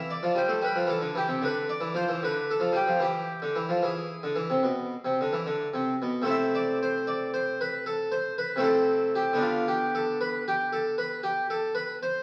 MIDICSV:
0, 0, Header, 1, 2, 480
1, 0, Start_track
1, 0, Key_signature, 0, "minor"
1, 0, Tempo, 522648
1, 2266, Tempo, 540541
1, 2746, Time_signature, 12, 3, 24, 8
1, 6586, Tempo, 518583
1, 11118, End_track
2, 0, Start_track
2, 0, Title_t, "Harpsichord"
2, 0, Program_c, 0, 6
2, 0, Note_on_c, 0, 52, 60
2, 0, Note_on_c, 0, 76, 81
2, 96, Note_on_c, 0, 74, 69
2, 113, Note_off_c, 0, 76, 0
2, 124, Note_off_c, 0, 52, 0
2, 210, Note_on_c, 0, 53, 59
2, 322, Note_on_c, 0, 55, 56
2, 332, Note_off_c, 0, 53, 0
2, 341, Note_off_c, 0, 74, 0
2, 348, Note_on_c, 0, 72, 68
2, 444, Note_on_c, 0, 57, 56
2, 447, Note_off_c, 0, 55, 0
2, 550, Note_off_c, 0, 72, 0
2, 566, Note_on_c, 0, 55, 56
2, 568, Note_off_c, 0, 57, 0
2, 590, Note_on_c, 0, 71, 71
2, 688, Note_off_c, 0, 55, 0
2, 693, Note_on_c, 0, 53, 51
2, 791, Note_off_c, 0, 71, 0
2, 794, Note_on_c, 0, 52, 51
2, 812, Note_off_c, 0, 53, 0
2, 820, Note_on_c, 0, 69, 70
2, 921, Note_off_c, 0, 52, 0
2, 927, Note_on_c, 0, 50, 53
2, 1024, Note_off_c, 0, 69, 0
2, 1048, Note_off_c, 0, 50, 0
2, 1058, Note_on_c, 0, 52, 55
2, 1078, Note_on_c, 0, 67, 65
2, 1173, Note_off_c, 0, 52, 0
2, 1174, Note_on_c, 0, 48, 58
2, 1290, Note_off_c, 0, 48, 0
2, 1301, Note_on_c, 0, 50, 57
2, 1307, Note_off_c, 0, 67, 0
2, 1331, Note_on_c, 0, 71, 74
2, 1521, Note_off_c, 0, 71, 0
2, 1556, Note_on_c, 0, 74, 68
2, 1560, Note_off_c, 0, 50, 0
2, 1658, Note_on_c, 0, 52, 48
2, 1773, Note_off_c, 0, 52, 0
2, 1785, Note_on_c, 0, 53, 50
2, 1789, Note_off_c, 0, 74, 0
2, 1803, Note_on_c, 0, 72, 63
2, 1898, Note_off_c, 0, 53, 0
2, 1917, Note_on_c, 0, 52, 47
2, 1999, Note_off_c, 0, 72, 0
2, 2025, Note_off_c, 0, 52, 0
2, 2045, Note_on_c, 0, 50, 52
2, 2062, Note_on_c, 0, 71, 68
2, 2285, Note_off_c, 0, 71, 0
2, 2300, Note_off_c, 0, 50, 0
2, 2301, Note_on_c, 0, 69, 69
2, 2383, Note_on_c, 0, 53, 47
2, 2489, Note_off_c, 0, 69, 0
2, 2491, Note_on_c, 0, 55, 49
2, 2497, Note_off_c, 0, 53, 0
2, 2523, Note_on_c, 0, 67, 62
2, 2612, Note_off_c, 0, 55, 0
2, 2627, Note_on_c, 0, 53, 49
2, 2720, Note_off_c, 0, 67, 0
2, 2734, Note_on_c, 0, 52, 51
2, 2741, Note_off_c, 0, 53, 0
2, 2757, Note_on_c, 0, 67, 72
2, 3001, Note_off_c, 0, 52, 0
2, 3113, Note_on_c, 0, 50, 49
2, 3228, Note_off_c, 0, 50, 0
2, 3233, Note_on_c, 0, 52, 44
2, 3348, Note_off_c, 0, 52, 0
2, 3351, Note_on_c, 0, 53, 48
2, 3372, Note_off_c, 0, 67, 0
2, 3468, Note_off_c, 0, 53, 0
2, 3471, Note_on_c, 0, 52, 52
2, 3494, Note_on_c, 0, 68, 48
2, 3732, Note_off_c, 0, 52, 0
2, 3834, Note_on_c, 0, 50, 46
2, 3943, Note_on_c, 0, 52, 47
2, 3949, Note_off_c, 0, 50, 0
2, 4064, Note_off_c, 0, 52, 0
2, 4069, Note_on_c, 0, 48, 52
2, 4187, Note_on_c, 0, 47, 53
2, 4188, Note_off_c, 0, 48, 0
2, 4454, Note_off_c, 0, 47, 0
2, 4555, Note_on_c, 0, 48, 44
2, 4674, Note_off_c, 0, 48, 0
2, 4701, Note_on_c, 0, 50, 53
2, 4719, Note_off_c, 0, 68, 0
2, 4806, Note_on_c, 0, 52, 45
2, 4808, Note_off_c, 0, 50, 0
2, 4920, Note_off_c, 0, 52, 0
2, 4925, Note_on_c, 0, 50, 46
2, 5099, Note_off_c, 0, 50, 0
2, 5169, Note_on_c, 0, 48, 50
2, 5342, Note_off_c, 0, 48, 0
2, 5419, Note_on_c, 0, 47, 44
2, 5587, Note_off_c, 0, 47, 0
2, 5596, Note_on_c, 0, 48, 46
2, 5606, Note_on_c, 0, 57, 45
2, 5625, Note_on_c, 0, 60, 44
2, 5634, Note_on_c, 0, 64, 43
2, 5675, Note_on_c, 0, 76, 79
2, 5891, Note_on_c, 0, 74, 86
2, 5895, Note_off_c, 0, 76, 0
2, 6087, Note_off_c, 0, 74, 0
2, 6137, Note_on_c, 0, 72, 73
2, 6329, Note_off_c, 0, 72, 0
2, 6357, Note_on_c, 0, 74, 76
2, 6554, Note_off_c, 0, 74, 0
2, 6591, Note_on_c, 0, 72, 80
2, 6831, Note_off_c, 0, 72, 0
2, 6842, Note_on_c, 0, 71, 89
2, 7041, Note_off_c, 0, 71, 0
2, 7078, Note_on_c, 0, 69, 74
2, 7312, Note_on_c, 0, 72, 67
2, 7314, Note_off_c, 0, 69, 0
2, 7515, Note_off_c, 0, 72, 0
2, 7558, Note_on_c, 0, 71, 85
2, 7712, Note_off_c, 0, 48, 0
2, 7723, Note_on_c, 0, 48, 53
2, 7728, Note_off_c, 0, 57, 0
2, 7739, Note_on_c, 0, 57, 47
2, 7742, Note_off_c, 0, 60, 0
2, 7746, Note_off_c, 0, 64, 0
2, 7753, Note_on_c, 0, 60, 47
2, 7765, Note_on_c, 0, 64, 44
2, 7794, Note_off_c, 0, 71, 0
2, 7801, Note_on_c, 0, 69, 81
2, 8206, Note_off_c, 0, 69, 0
2, 8272, Note_on_c, 0, 67, 78
2, 8438, Note_on_c, 0, 50, 52
2, 8452, Note_on_c, 0, 59, 40
2, 8455, Note_off_c, 0, 48, 0
2, 8464, Note_off_c, 0, 57, 0
2, 8470, Note_on_c, 0, 62, 44
2, 8471, Note_off_c, 0, 60, 0
2, 8477, Note_off_c, 0, 64, 0
2, 8511, Note_off_c, 0, 67, 0
2, 8516, Note_on_c, 0, 65, 74
2, 8717, Note_off_c, 0, 65, 0
2, 8760, Note_on_c, 0, 67, 83
2, 8994, Note_off_c, 0, 67, 0
2, 9007, Note_on_c, 0, 69, 77
2, 9204, Note_off_c, 0, 69, 0
2, 9248, Note_on_c, 0, 71, 84
2, 9444, Note_off_c, 0, 71, 0
2, 9499, Note_on_c, 0, 67, 84
2, 9690, Note_off_c, 0, 67, 0
2, 9726, Note_on_c, 0, 69, 71
2, 9923, Note_off_c, 0, 69, 0
2, 9964, Note_on_c, 0, 71, 90
2, 10160, Note_off_c, 0, 71, 0
2, 10197, Note_on_c, 0, 67, 74
2, 10395, Note_off_c, 0, 67, 0
2, 10446, Note_on_c, 0, 69, 67
2, 10641, Note_off_c, 0, 69, 0
2, 10673, Note_on_c, 0, 71, 78
2, 10875, Note_off_c, 0, 71, 0
2, 10931, Note_on_c, 0, 72, 92
2, 11118, Note_off_c, 0, 50, 0
2, 11118, Note_off_c, 0, 59, 0
2, 11118, Note_off_c, 0, 62, 0
2, 11118, Note_off_c, 0, 72, 0
2, 11118, End_track
0, 0, End_of_file